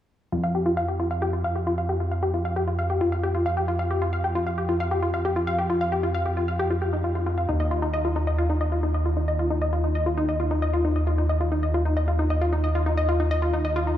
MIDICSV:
0, 0, Header, 1, 3, 480
1, 0, Start_track
1, 0, Tempo, 447761
1, 348, Time_signature, 4, 2, 24, 8
1, 14982, End_track
2, 0, Start_track
2, 0, Title_t, "Synth pluck"
2, 0, Program_c, 0, 84
2, 348, Note_on_c, 0, 65, 73
2, 432, Note_off_c, 0, 65, 0
2, 467, Note_on_c, 0, 77, 77
2, 552, Note_off_c, 0, 77, 0
2, 587, Note_on_c, 0, 67, 73
2, 644, Note_off_c, 0, 67, 0
2, 706, Note_on_c, 0, 65, 76
2, 792, Note_off_c, 0, 65, 0
2, 827, Note_on_c, 0, 77, 77
2, 912, Note_off_c, 0, 77, 0
2, 947, Note_on_c, 0, 67, 74
2, 1004, Note_off_c, 0, 67, 0
2, 1068, Note_on_c, 0, 65, 74
2, 1152, Note_off_c, 0, 65, 0
2, 1187, Note_on_c, 0, 77, 70
2, 1272, Note_off_c, 0, 77, 0
2, 1307, Note_on_c, 0, 67, 80
2, 1364, Note_off_c, 0, 67, 0
2, 1427, Note_on_c, 0, 65, 73
2, 1512, Note_off_c, 0, 65, 0
2, 1548, Note_on_c, 0, 77, 77
2, 1632, Note_off_c, 0, 77, 0
2, 1667, Note_on_c, 0, 67, 71
2, 1724, Note_off_c, 0, 67, 0
2, 1788, Note_on_c, 0, 65, 83
2, 1872, Note_off_c, 0, 65, 0
2, 1908, Note_on_c, 0, 77, 70
2, 1992, Note_off_c, 0, 77, 0
2, 2027, Note_on_c, 0, 67, 72
2, 2084, Note_off_c, 0, 67, 0
2, 2147, Note_on_c, 0, 65, 68
2, 2232, Note_off_c, 0, 65, 0
2, 2267, Note_on_c, 0, 77, 75
2, 2352, Note_off_c, 0, 77, 0
2, 2387, Note_on_c, 0, 67, 78
2, 2444, Note_off_c, 0, 67, 0
2, 2508, Note_on_c, 0, 65, 73
2, 2592, Note_off_c, 0, 65, 0
2, 2627, Note_on_c, 0, 77, 76
2, 2712, Note_off_c, 0, 77, 0
2, 2747, Note_on_c, 0, 67, 82
2, 2804, Note_off_c, 0, 67, 0
2, 2867, Note_on_c, 0, 65, 74
2, 2952, Note_off_c, 0, 65, 0
2, 2987, Note_on_c, 0, 77, 74
2, 3072, Note_off_c, 0, 77, 0
2, 3107, Note_on_c, 0, 67, 67
2, 3164, Note_off_c, 0, 67, 0
2, 3227, Note_on_c, 0, 65, 79
2, 3312, Note_off_c, 0, 65, 0
2, 3348, Note_on_c, 0, 77, 68
2, 3432, Note_off_c, 0, 77, 0
2, 3468, Note_on_c, 0, 67, 77
2, 3524, Note_off_c, 0, 67, 0
2, 3587, Note_on_c, 0, 65, 70
2, 3672, Note_off_c, 0, 65, 0
2, 3707, Note_on_c, 0, 77, 77
2, 3792, Note_off_c, 0, 77, 0
2, 3827, Note_on_c, 0, 67, 73
2, 3884, Note_off_c, 0, 67, 0
2, 3946, Note_on_c, 0, 65, 79
2, 4032, Note_off_c, 0, 65, 0
2, 4065, Note_on_c, 0, 77, 69
2, 4151, Note_off_c, 0, 77, 0
2, 4187, Note_on_c, 0, 67, 74
2, 4244, Note_off_c, 0, 67, 0
2, 4307, Note_on_c, 0, 65, 79
2, 4392, Note_off_c, 0, 65, 0
2, 4426, Note_on_c, 0, 77, 74
2, 4511, Note_off_c, 0, 77, 0
2, 4547, Note_on_c, 0, 67, 76
2, 4603, Note_off_c, 0, 67, 0
2, 4667, Note_on_c, 0, 65, 85
2, 4752, Note_off_c, 0, 65, 0
2, 4787, Note_on_c, 0, 77, 73
2, 4872, Note_off_c, 0, 77, 0
2, 4908, Note_on_c, 0, 67, 74
2, 4964, Note_off_c, 0, 67, 0
2, 5027, Note_on_c, 0, 65, 73
2, 5112, Note_off_c, 0, 65, 0
2, 5148, Note_on_c, 0, 77, 85
2, 5232, Note_off_c, 0, 77, 0
2, 5267, Note_on_c, 0, 67, 73
2, 5324, Note_off_c, 0, 67, 0
2, 5387, Note_on_c, 0, 65, 73
2, 5472, Note_off_c, 0, 65, 0
2, 5508, Note_on_c, 0, 77, 69
2, 5592, Note_off_c, 0, 77, 0
2, 5628, Note_on_c, 0, 67, 75
2, 5684, Note_off_c, 0, 67, 0
2, 5747, Note_on_c, 0, 65, 72
2, 5832, Note_off_c, 0, 65, 0
2, 5867, Note_on_c, 0, 77, 79
2, 5952, Note_off_c, 0, 77, 0
2, 5987, Note_on_c, 0, 67, 69
2, 6044, Note_off_c, 0, 67, 0
2, 6108, Note_on_c, 0, 65, 77
2, 6192, Note_off_c, 0, 65, 0
2, 6228, Note_on_c, 0, 77, 74
2, 6312, Note_off_c, 0, 77, 0
2, 6348, Note_on_c, 0, 67, 72
2, 6404, Note_off_c, 0, 67, 0
2, 6467, Note_on_c, 0, 65, 76
2, 6552, Note_off_c, 0, 65, 0
2, 6587, Note_on_c, 0, 77, 80
2, 6672, Note_off_c, 0, 77, 0
2, 6707, Note_on_c, 0, 67, 70
2, 6764, Note_off_c, 0, 67, 0
2, 6828, Note_on_c, 0, 65, 78
2, 6912, Note_off_c, 0, 65, 0
2, 6948, Note_on_c, 0, 77, 74
2, 7032, Note_off_c, 0, 77, 0
2, 7068, Note_on_c, 0, 67, 86
2, 7124, Note_off_c, 0, 67, 0
2, 7188, Note_on_c, 0, 65, 73
2, 7272, Note_off_c, 0, 65, 0
2, 7309, Note_on_c, 0, 67, 71
2, 7365, Note_off_c, 0, 67, 0
2, 7428, Note_on_c, 0, 63, 71
2, 7484, Note_off_c, 0, 63, 0
2, 7548, Note_on_c, 0, 65, 78
2, 7582, Note_off_c, 0, 65, 0
2, 7668, Note_on_c, 0, 65, 74
2, 7702, Note_off_c, 0, 65, 0
2, 7787, Note_on_c, 0, 65, 75
2, 7844, Note_off_c, 0, 65, 0
2, 7908, Note_on_c, 0, 77, 65
2, 7941, Note_off_c, 0, 77, 0
2, 8026, Note_on_c, 0, 63, 77
2, 8112, Note_off_c, 0, 63, 0
2, 8147, Note_on_c, 0, 75, 75
2, 8232, Note_off_c, 0, 75, 0
2, 8267, Note_on_c, 0, 65, 74
2, 8323, Note_off_c, 0, 65, 0
2, 8386, Note_on_c, 0, 63, 75
2, 8471, Note_off_c, 0, 63, 0
2, 8507, Note_on_c, 0, 75, 80
2, 8592, Note_off_c, 0, 75, 0
2, 8627, Note_on_c, 0, 65, 73
2, 8684, Note_off_c, 0, 65, 0
2, 8747, Note_on_c, 0, 63, 78
2, 8832, Note_off_c, 0, 63, 0
2, 8868, Note_on_c, 0, 75, 73
2, 8952, Note_off_c, 0, 75, 0
2, 8988, Note_on_c, 0, 65, 83
2, 9044, Note_off_c, 0, 65, 0
2, 9108, Note_on_c, 0, 63, 76
2, 9193, Note_off_c, 0, 63, 0
2, 9228, Note_on_c, 0, 75, 72
2, 9312, Note_off_c, 0, 75, 0
2, 9348, Note_on_c, 0, 65, 74
2, 9404, Note_off_c, 0, 65, 0
2, 9467, Note_on_c, 0, 63, 78
2, 9552, Note_off_c, 0, 63, 0
2, 9588, Note_on_c, 0, 75, 71
2, 9672, Note_off_c, 0, 75, 0
2, 9708, Note_on_c, 0, 65, 75
2, 9764, Note_off_c, 0, 65, 0
2, 9828, Note_on_c, 0, 63, 67
2, 9912, Note_off_c, 0, 63, 0
2, 9949, Note_on_c, 0, 75, 78
2, 10033, Note_off_c, 0, 75, 0
2, 10068, Note_on_c, 0, 65, 76
2, 10124, Note_off_c, 0, 65, 0
2, 10189, Note_on_c, 0, 63, 78
2, 10273, Note_off_c, 0, 63, 0
2, 10308, Note_on_c, 0, 75, 72
2, 10392, Note_off_c, 0, 75, 0
2, 10428, Note_on_c, 0, 65, 80
2, 10484, Note_off_c, 0, 65, 0
2, 10548, Note_on_c, 0, 63, 75
2, 10633, Note_off_c, 0, 63, 0
2, 10668, Note_on_c, 0, 75, 78
2, 10752, Note_off_c, 0, 75, 0
2, 10788, Note_on_c, 0, 65, 73
2, 10844, Note_off_c, 0, 65, 0
2, 10907, Note_on_c, 0, 63, 84
2, 10992, Note_off_c, 0, 63, 0
2, 11027, Note_on_c, 0, 75, 73
2, 11112, Note_off_c, 0, 75, 0
2, 11146, Note_on_c, 0, 65, 75
2, 11203, Note_off_c, 0, 65, 0
2, 11267, Note_on_c, 0, 63, 72
2, 11352, Note_off_c, 0, 63, 0
2, 11388, Note_on_c, 0, 75, 81
2, 11472, Note_off_c, 0, 75, 0
2, 11507, Note_on_c, 0, 65, 76
2, 11564, Note_off_c, 0, 65, 0
2, 11628, Note_on_c, 0, 63, 72
2, 11712, Note_off_c, 0, 63, 0
2, 11748, Note_on_c, 0, 75, 65
2, 11832, Note_off_c, 0, 75, 0
2, 11867, Note_on_c, 0, 65, 79
2, 11924, Note_off_c, 0, 65, 0
2, 11987, Note_on_c, 0, 63, 78
2, 12072, Note_off_c, 0, 63, 0
2, 12108, Note_on_c, 0, 75, 76
2, 12192, Note_off_c, 0, 75, 0
2, 12227, Note_on_c, 0, 65, 75
2, 12284, Note_off_c, 0, 65, 0
2, 12346, Note_on_c, 0, 63, 81
2, 12432, Note_off_c, 0, 63, 0
2, 12467, Note_on_c, 0, 75, 72
2, 12552, Note_off_c, 0, 75, 0
2, 12588, Note_on_c, 0, 65, 73
2, 12644, Note_off_c, 0, 65, 0
2, 12708, Note_on_c, 0, 63, 74
2, 12792, Note_off_c, 0, 63, 0
2, 12828, Note_on_c, 0, 75, 80
2, 12912, Note_off_c, 0, 75, 0
2, 12948, Note_on_c, 0, 65, 71
2, 13004, Note_off_c, 0, 65, 0
2, 13068, Note_on_c, 0, 63, 73
2, 13153, Note_off_c, 0, 63, 0
2, 13189, Note_on_c, 0, 75, 72
2, 13273, Note_off_c, 0, 75, 0
2, 13308, Note_on_c, 0, 65, 78
2, 13364, Note_off_c, 0, 65, 0
2, 13428, Note_on_c, 0, 63, 75
2, 13512, Note_off_c, 0, 63, 0
2, 13548, Note_on_c, 0, 75, 72
2, 13632, Note_off_c, 0, 75, 0
2, 13669, Note_on_c, 0, 65, 71
2, 13725, Note_off_c, 0, 65, 0
2, 13788, Note_on_c, 0, 63, 72
2, 13873, Note_off_c, 0, 63, 0
2, 13909, Note_on_c, 0, 75, 78
2, 13993, Note_off_c, 0, 75, 0
2, 14029, Note_on_c, 0, 65, 75
2, 14085, Note_off_c, 0, 65, 0
2, 14149, Note_on_c, 0, 63, 77
2, 14233, Note_off_c, 0, 63, 0
2, 14268, Note_on_c, 0, 75, 85
2, 14352, Note_off_c, 0, 75, 0
2, 14389, Note_on_c, 0, 65, 71
2, 14445, Note_off_c, 0, 65, 0
2, 14509, Note_on_c, 0, 63, 78
2, 14593, Note_off_c, 0, 63, 0
2, 14630, Note_on_c, 0, 75, 74
2, 14713, Note_off_c, 0, 75, 0
2, 14750, Note_on_c, 0, 65, 87
2, 14805, Note_off_c, 0, 65, 0
2, 14870, Note_on_c, 0, 63, 73
2, 14954, Note_off_c, 0, 63, 0
2, 14982, End_track
3, 0, Start_track
3, 0, Title_t, "Analog synth bass"
3, 0, Program_c, 1, 38
3, 349, Note_on_c, 1, 41, 82
3, 8004, Note_off_c, 1, 41, 0
3, 8028, Note_on_c, 1, 39, 85
3, 14982, Note_off_c, 1, 39, 0
3, 14982, End_track
0, 0, End_of_file